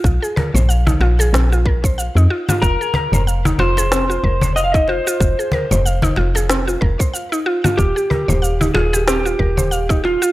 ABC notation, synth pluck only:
X:1
M:4/4
L:1/16
Q:"Swing 16ths" 1/4=93
K:Fm
V:1 name="Synth pluck"
F A B c f E F A C F B c f E F F | F A B c f E F A C F B c f E F F | F A B c f E F A C F B c f E F F | F G B c f E F G C F B c f E F F |]